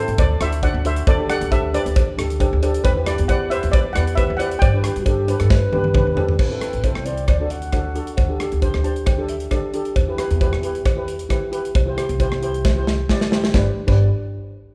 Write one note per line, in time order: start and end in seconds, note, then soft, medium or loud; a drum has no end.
0.00 0.19 C4 medium
0.00 0.19 E4 medium
0.00 0.17 A4 medium
0.00 0.19 A4 medium
0.00 0.17 C5 loud
0.08 0.16 A1 medium
0.08 closed hi-hat medium
0.18 0.36 D2 loud
0.18 0.29 A4 medium
0.18 0.29 D5 loud
0.18 kick loud
0.18 closed hi-hat medium
0.18 cowbell medium
0.41 0.67 D2 medium
0.41 0.55 D4 medium
0.41 0.55 F#4 medium
0.41 0.55 A4 medium
0.41 0.62 C5 medium
0.41 0.64 E5 loud
0.41 cross-stick medium
0.41 closed hi-hat medium
0.53 closed hi-hat medium
0.63 0.77 D4 medium
0.63 0.77 F#4 medium
0.63 0.77 A4 medium
0.63 0.84 D5 medium
0.63 0.84 F#5 loud
0.63 kick medium
0.63 closed hi-hat medium
0.63 cowbell medium
0.74 1.00 D2 loud
0.84 1.05 D4 medium
0.84 1.05 F#4 medium
0.84 1.06 A4 medium
0.84 1.06 C5 medium
0.84 1.09 E5 loud
0.84 closed hi-hat medium
0.96 closed hi-hat medium
1.07 1.33 D2 loud
1.07 1.28 A4 medium
1.07 1.28 D5 loud
1.07 kick loud
1.07 closed hi-hat medium
1.07 cowbell medium
1.18 1.25 D4 medium
1.18 1.25 G4 medium
1.18 1.26 A4 medium
1.29 1.43 D4 medium
1.29 1.43 G4 medium
1.29 1.44 A4 medium
1.29 1.50 D5 medium
1.29 1.52 F#5 loud
1.29 cross-stick medium
1.29 closed hi-hat medium
1.41 1.75 D2 loud
1.41 closed hi-hat medium
1.51 1.65 D4 medium
1.51 1.66 G4 medium
1.51 1.72 A4 medium
1.51 1.66 A4 medium
1.51 1.72 E5 loud
1.51 kick medium
1.51 closed hi-hat medium
1.51 cowbell medium
1.73 2.00 D4 medium
1.73 2.01 G4 medium
1.73 2.02 A4 medium
1.73 2.59 B4 medium
1.73 2.59 D5 loud
1.73 closed hi-hat medium
1.73 cowbell medium
1.86 2.11 D2 medium
1.86 closed hi-hat medium
1.96 kick loud
1.96 closed hi-hat medium
1.96 cowbell medium
2.17 2.44 D2 medium
2.17 2.32 D4 medium
2.17 2.32 G4 medium
2.17 2.32 A4 medium
2.17 cross-stick medium
2.17 closed hi-hat medium
2.30 closed hi-hat medium
2.40 2.54 D4 medium
2.40 2.54 G4 medium
2.40 2.55 A4 medium
2.40 2.61 G5 medium
2.40 kick medium
2.40 closed hi-hat medium
2.40 cowbell medium
2.53 2.78 D2 loud
2.63 2.83 D4 loud
2.63 2.83 G4 medium
2.63 2.83 A4 loud
2.63 2.83 D5 medium
2.63 closed hi-hat medium
2.63 cowbell medium
2.74 closed hi-hat medium
2.84 3.11 E2 loud
2.84 3.05 G4 medium
2.84 3.06 B4 loud
2.84 kick loud
2.84 closed hi-hat medium
2.84 cowbell loud
2.96 3.02 E4 medium
2.96 3.03 G4 medium
2.96 3.03 B4 medium
3.06 3.20 E4 medium
3.06 3.21 G4 medium
3.06 3.28 B4 medium
3.06 3.21 B4 medium
3.06 3.29 D5 medium
3.06 cross-stick loud
3.06 closed hi-hat loud
3.18 3.53 E2 loud
3.18 closed hi-hat medium
3.28 3.42 E4 medium
3.28 3.43 G4 medium
3.28 3.43 B4 medium
3.28 3.50 D5 medium
3.28 3.49 F#5 loud
3.28 kick medium
3.28 closed hi-hat medium
3.28 cowbell medium
3.50 3.78 E4 medium
3.50 3.78 G4 medium
3.50 3.79 B4 medium
3.50 3.72 C5 medium
3.50 3.73 E5 medium
3.50 closed hi-hat medium
3.50 cowbell medium
3.63 3.89 E2 medium
3.63 closed hi-hat medium
3.72 3.94 B4 medium
3.72 3.93 D5 loud
3.72 kick loud
3.72 closed hi-hat medium
3.72 cowbell medium
3.93 4.22 E2 medium
3.93 4.09 E4 medium
3.93 4.10 G4 medium
3.93 4.16 D5 medium
3.93 4.17 F#5 medium
3.93 cross-stick medium
3.93 closed hi-hat medium
3.97 4.10 B4 medium
4.07 closed hi-hat medium
4.15 4.31 E4 medium
4.15 4.31 G4 medium
4.15 4.38 B4 medium
4.15 4.32 B4 medium
4.15 4.39 E5 loud
4.15 kick medium
4.15 closed hi-hat medium
4.15 cowbell medium
4.30 4.55 E2 medium
4.37 4.59 E4 medium
4.37 4.60 G4 medium
4.37 4.60 D5 medium
4.37 4.59 F#5 loud
4.37 closed hi-hat medium
4.37 cowbell medium
4.41 4.61 B4 medium
4.51 closed hi-hat medium
4.59 4.88 G2 loud
4.59 5.91 D5 medium
4.59 5.90 G5 loud
4.59 kick loud
4.59 closed hi-hat medium
4.59 cowbell loud
4.73 4.80 D4 medium
4.73 4.80 G4 medium
4.73 4.81 B4 medium
4.84 4.98 D4 medium
4.84 4.98 G4 medium
4.84 4.99 B4 medium
4.84 cross-stick medium
4.84 closed hi-hat medium
4.96 5.30 G2 medium
4.96 5.08 F#4 medium
4.96 closed hi-hat medium
5.05 5.20 D4 medium
5.05 5.20 G4 medium
5.05 5.41 G4 loud
5.05 5.21 A4 medium
5.05 kick medium
5.05 closed hi-hat medium
5.05 cowbell medium
5.28 5.55 D4 loud
5.28 5.56 G4 medium
5.28 5.56 B4 loud
5.28 closed hi-hat medium
5.28 cowbell medium
5.40 5.66 G2 medium
5.40 5.52 A4 medium
5.40 cross-stick medium
5.40 closed hi-hat medium
5.50 6.39 B4 loud
5.50 kick loud
5.50 snare medium
5.50 cowbell medium
5.72 5.99 G2 medium
5.72 5.86 D4 medium
5.72 5.87 G4 medium
5.72 5.87 B4 loud
5.72 high tom medium
5.84 high tom medium
5.94 6.08 D4 medium
5.94 6.09 G4 medium
5.94 6.09 B4 loud
5.94 kick loud
5.94 mid tom medium
5.94 cowbell medium
6.07 6.32 E2 medium
6.15 6.37 D4 medium
6.15 6.37 G4 medium
6.15 6.38 A4 medium
6.15 floor tom loud
6.15 cowbell medium
6.29 floor tom loud
6.39 6.57 A1 medium
6.39 6.85 B4 medium
6.39 kick loud
6.39 crash loud
6.39 cowbell medium
6.49 6.57 C4 medium
6.49 6.57 E4 medium
6.49 6.58 A4 medium
6.60 6.75 C4 medium
6.60 6.75 E4 medium
6.60 6.75 A4 loud
6.60 cross-stick medium
6.60 closed hi-hat medium
6.73 6.91 A1 medium
6.73 closed hi-hat medium
6.83 6.98 C4 medium
6.83 6.98 E4 medium
6.83 6.99 A4 medium
6.83 7.07 C5 medium
6.83 kick medium
6.83 closed hi-hat medium
6.83 cowbell medium
6.95 7.22 C2 medium
6.95 cross-stick medium
7.05 7.26 C4 medium
7.05 7.26 E4 medium
7.05 7.27 C5 medium
7.05 7.28 D5 medium
7.05 closed hi-hat medium
7.17 closed hi-hat medium
7.28 7.98 D2 loud
7.28 7.39 D5 medium
7.28 kick loud
7.28 cross-stick medium
7.28 closed hi-hat medium
7.28 cowbell medium
7.40 7.60 D4 medium
7.40 7.61 F#4 medium
7.40 7.61 A4 medium
7.40 7.53 D5 medium
7.50 8.40 F#5 loud
7.50 closed hi-hat medium
7.62 closed hi-hat medium
7.72 7.87 D4 medium
7.72 7.87 F#4 medium
7.72 7.88 A4 medium
7.72 kick medium
7.72 cross-stick medium
7.72 closed hi-hat medium
7.72 cowbell medium
7.95 8.15 D4 medium
7.95 8.16 F#4 medium
7.95 8.16 A4 loud
7.95 closed hi-hat medium
8.07 closed hi-hat medium
8.17 8.35 D2 medium
8.17 kick loud
8.17 closed hi-hat medium
8.17 cowbell medium
8.28 8.35 D4 medium
8.28 8.36 G4 medium
8.28 8.36 A4 medium
8.39 8.53 D4 medium
8.39 8.54 G4 medium
8.39 8.54 A4 medium
8.39 cross-stick medium
8.39 closed hi-hat medium
8.52 8.69 D2 medium
8.52 closed hi-hat medium
8.61 8.76 D4 medium
8.61 8.76 G4 medium
8.61 8.77 C5 loud
8.61 kick medium
8.61 closed hi-hat medium
8.61 cowbell medium
8.74 9.44 D2 medium
8.74 cross-stick medium
8.83 9.04 D4 medium
8.83 9.05 G4 medium
8.83 9.05 C5 medium
8.83 9.05 A5 medium
8.83 closed hi-hat medium
8.96 closed hi-hat soft
9.06 9.28 G5 medium
9.06 kick loud
9.06 cross-stick medium
9.06 closed hi-hat medium
9.06 cowbell medium
9.17 9.38 D4 medium
9.17 9.39 G4 medium
9.17 9.39 A4 medium
9.29 9.50 E5 medium
9.29 closed hi-hat medium
9.40 closed hi-hat medium
9.51 9.65 D4 medium
9.51 9.66 G4 medium
9.51 9.66 A4 medium
9.51 9.93 D5 medium
9.51 kick medium
9.51 cross-stick medium
9.51 closed hi-hat medium
9.51 cowbell medium
9.74 9.94 D4 medium
9.74 9.94 G4 medium
9.74 9.95 A4 loud
9.74 closed hi-hat medium
9.85 closed hi-hat medium
9.96 10.14 E2 medium
9.96 kick loud
9.96 closed hi-hat medium
9.96 cowbell medium
10.08 10.14 E4 medium
10.08 10.15 G4 medium
10.08 10.15 B4 medium
10.17 10.32 E4 medium
10.17 10.32 G4 medium
10.17 10.33 B4 loud
10.17 cross-stick medium
10.17 closed hi-hat medium
10.31 10.48 E2 loud
10.31 closed hi-hat medium
10.40 10.54 E4 medium
10.40 10.55 G4 medium
10.40 10.55 B4 loud
10.40 kick medium
10.40 closed hi-hat medium
10.40 cowbell medium
10.52 11.22 E2 medium
10.52 cross-stick medium
10.62 10.83 E4 medium
10.62 10.84 G4 medium
10.62 10.84 B4 medium
10.62 closed hi-hat medium
10.75 closed hi-hat medium
10.86 kick loud
10.86 cross-stick medium
10.86 closed hi-hat medium
10.86 cowbell medium
10.96 11.17 E4 medium
10.96 11.17 G4 medium
10.96 11.17 B4 medium
11.08 closed hi-hat medium
11.19 closed hi-hat medium
11.29 11.44 E4 medium
11.29 11.44 G4 medium
11.29 11.44 B4 medium
11.29 kick medium
11.29 cross-stick medium
11.29 closed hi-hat medium
11.29 cowbell medium
11.51 11.72 E4 medium
11.51 11.72 G4 medium
11.51 11.73 B4 loud
11.51 closed hi-hat medium
11.65 closed hi-hat medium
11.75 11.92 C2 medium
11.75 kick loud
11.75 closed hi-hat medium
11.75 cowbell medium
11.86 11.93 E4 medium
11.86 11.93 G4 medium
11.86 11.94 C5 medium
11.96 12.11 E4 medium
11.96 12.11 G4 medium
11.96 12.11 C5 loud
11.96 cross-stick medium
11.96 closed hi-hat medium
12.09 12.27 C2 medium
12.09 closed hi-hat medium
12.19 12.33 E4 medium
12.19 12.34 G4 medium
12.19 12.34 C5 loud
12.19 kick medium
12.19 closed hi-hat medium
12.19 cowbell medium
12.32 13.01 C2 medium
12.32 cross-stick medium
12.42 12.62 E4 loud
12.42 12.63 G4 medium
12.42 12.63 C5 loud
12.42 closed hi-hat medium
12.54 closed hi-hat medium
12.65 kick loud
12.65 snare medium
12.65 cowbell medium
12.76 12.96 E4 medium
12.76 12.96 G4 medium
12.76 12.97 C5 loud
12.87 snare medium
13.09 13.23 E4 medium
13.09 13.23 G4 medium
13.09 13.24 D5 medium
13.09 kick medium
13.09 snare medium
13.09 cowbell medium
13.21 snare medium
13.31 13.51 E4 medium
13.31 13.51 G4 medium
13.31 13.52 C5 medium
13.31 snare medium
13.44 snare medium
13.54 13.67 G1 medium
13.54 13.67 D4 medium
13.54 13.67 G4 medium
13.54 13.67 B4 medium
13.54 13.67 D5 medium
13.54 kick loud
13.54 snare medium
13.54 cowbell medium
13.87 14.09 G1 loud
13.87 14.08 D4 medium
13.87 14.08 G4 medium
13.87 14.08 B4 medium
13.87 14.09 D5 medium
13.87 kick loud
13.87 crash medium
13.87 cowbell medium